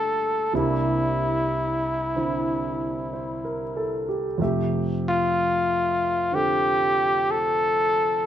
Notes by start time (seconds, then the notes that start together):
Already playing: G2 D3 G3 A3 A#3 D4 F4 A4
0.53 C2 C3 A#3 D4 E4
2.15 D3 C4 E4
3.13 C5
3.45 A#4
3.77 A4
4.09 G4
4.38 F2 C3 A3 E5
4.43 G4
5.08 F4
6.32 D3 C4 F4 G4 A4
7.31 A4